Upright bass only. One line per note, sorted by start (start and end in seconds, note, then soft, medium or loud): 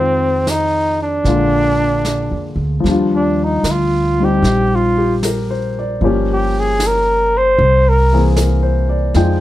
0.00 1.21 F2 medium
1.24 2.28 A#1 medium
2.31 2.55 F2 soft
2.56 2.82 D2 medium
2.84 3.60 D#2 medium
3.63 4.39 D2 medium
4.42 5.97 A#1 medium
6.01 7.54 G1 medium
7.58 9.11 C2 medium
9.15 9.40 F2 medium